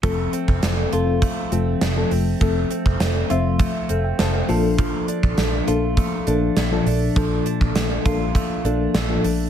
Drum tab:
HH |x-x-x-x-x-x-x-o-|x-x-x-x-x-x-x-o-|x-x-x-x-x-x-x-o-|x-x-x-x-x-x-x-o-|
SD |----o-------o---|----o-------o---|----o-------o---|----o-------o---|
BD |o--o----o-------|o--o----o-------|o--o----o-------|o--o--o-o-------|